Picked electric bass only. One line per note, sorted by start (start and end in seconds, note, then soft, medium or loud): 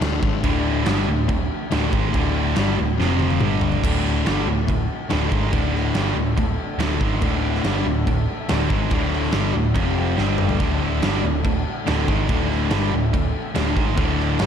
0.01 0.21 D1 loud
0.23 0.43 G#1 loud
0.44 0.84 D1 medium
0.87 1.06 G1 loud
1.08 1.28 D1 medium
1.29 1.49 D1 medium
1.73 1.92 D1 loud
1.93 2.13 G#1 loud
2.14 2.53 D1 loud
2.57 2.76 G1 medium
2.79 2.98 D1 medium
3.00 3.39 F1 medium
3.41 3.80 G1 medium
3.84 4.23 D1 medium
4.27 4.46 G1 medium
4.49 4.67 D1 medium
4.68 4.88 D1 medium
5.12 5.31 D1 loud
5.32 5.51 G#1 medium
5.53 5.92 D1 medium
5.95 6.14 G1 medium
6.16 6.36 D1 medium
6.38 6.57 D1 medium
6.78 6.98 D1 medium
7.01 7.21 G#1 medium
7.22 7.62 D1 medium
7.63 7.84 G1 medium
7.85 8.05 D1 medium
8.07 8.27 D1 medium
8.51 8.70 D1 loud
8.70 8.90 G#1 loud
8.92 9.31 D1 medium
9.34 9.53 G1 loud
9.55 9.74 D1 medium
9.76 10.15 F1 loud
10.18 10.57 G1 loud
10.60 10.99 D1 medium
11.03 11.23 G1 medium
11.25 11.44 D1 medium
11.44 11.64 D1 medium
11.88 12.07 D1 loud
12.08 12.27 G#1 loud
12.29 12.68 D1 medium
12.71 12.91 G1 loud
12.94 13.13 D1 medium
13.14 13.34 D1 medium
13.56 13.75 D1 medium
13.76 13.96 G#1 loud
13.98 14.37 D1 medium
14.41 14.46 G1 loud